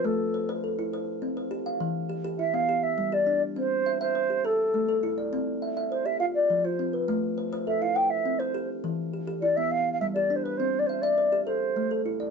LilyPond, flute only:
\new Staff \with { instrumentName = "Flute" } { \time 12/8 \key c \major \tempo 4. = 137 a'4. r1 r8 | r2 e''8 f''4 e''4 d''4 r8 | c''4. c''4. a'2~ a'8 r8 | r2 c''8 e''8 f''8 d''4 c''4 r8 |
r2 e''8 f''8 g''8 e''4 c''4 r8 | r2 d''8 e''8 f''8. f''16 e''8 d''8. c''16 b'8 | c''8. d''16 c''8 d''4. c''2 r4 | }